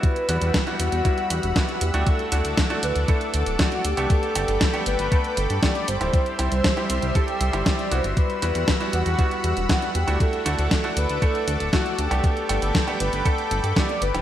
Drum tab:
HH |xxxxxxxxxxxxxxxx|xxxxxxxxxxxxxxxx|xxxxxxxxxxxxxxxx|xxxxxxxxxxxxxxxx|
SD |----o-------o---|----o-------o---|----o-------o---|----o-------o---|
BD |o---o---o---o---|o---o---o---o---|o---o---o---o---|o---o---o---o---|

HH |xxxxxxxxxxxxxxxx|xxxxxxxxxxxxxxxx|xxxxxxxxxxxxxxxx|
SD |----o-------o---|----o-------o---|----o-------o---|
BD |o---o---o---o---|o---o---o---o---|o---o---o---o---|